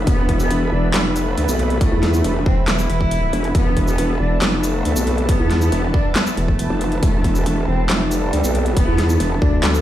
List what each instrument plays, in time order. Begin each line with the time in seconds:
Already playing: supersaw synth E3 B3 B4 E5 B5
0.07 wobble bass E1, cello B3, kick, closed hi-hat
0.29 wobble bass E1, kick, closed hi-hat
0.40 cello B3, shaker
0.51 closed hi-hat
0.72 wobble bass E1, cello D4
0.94 wobble bass F1, cello B3, snare, clap, closed hi-hat
1.16 cello A3, closed hi-hat, shaker
1.37 wobble bass D2, closed hi-hat
1.48 wobble bass B1, shaker
1.59 closed hi-hat
1.70 closed hi-hat
1.81 cello A3, kick, closed hi-hat
1.92 wobble bass E2
2.03 snare, closed hi-hat
2.14 cello A3, shaker
2.24 wobble bass E1, closed hi-hat
2.46 wobble bass E1, cello C4, kick
2.68 cello E4, snare, clap, closed hi-hat
2.79 shaker
2.90 wobble bass E1, cello E4, closed hi-hat
3.01 kick
3.11 closed hi-hat
3.33 wobble bass E1, closed hi-hat
3.44 closed hi-hat
3.55 wobble bass E1, cello B3, supersaw synth A5, kick, closed hi-hat
3.77 wobble bass E1, kick, closed hi-hat
3.88 cello B3, shaker
3.98 closed hi-hat
4.20 wobble bass E1, cello D4
4.42 wobble bass F1, cello B3, snare, clap, closed hi-hat
4.64 cello A3, closed hi-hat, shaker
4.85 wobble bass D2, closed hi-hat
4.96 wobble bass B1, shaker
5.07 closed hi-hat
5.18 closed hi-hat
5.29 cello B3, kick, closed hi-hat
5.40 wobble bass E2
5.50 snare, closed hi-hat
5.61 cello B3, shaker
5.72 wobble bass E1, closed hi-hat
5.94 cello D4, kick
6.16 cello B3, snare, clap, closed hi-hat
6.27 shaker
6.37 wobble bass E1, cello A3, closed hi-hat
6.48 kick
6.59 closed hi-hat
6.70 wobble bass F1
6.81 closed hi-hat
6.92 closed hi-hat
7.03 wobble bass E1, cello A3, kick, closed hi-hat
7.24 wobble bass E1, kick, closed hi-hat
7.35 cello A3, shaker
7.46 closed hi-hat
7.68 wobble bass E1, cello C4
7.90 wobble bass F1, cello A3, snare, clap, closed hi-hat
8.11 cello G3, closed hi-hat, shaker
8.33 wobble bass D2, closed hi-hat
8.44 wobble bass B1, shaker
8.55 closed hi-hat
8.66 closed hi-hat
8.77 cello B3, kick, closed hi-hat
8.88 wobble bass E2
8.98 snare, closed hi-hat
9.09 cello B3, shaker
9.20 wobble bass E1, closed hi-hat
9.42 wobble bass D2, cello D4, kick
9.64 cello B3, snare, clap, closed hi-hat
9.75 shaker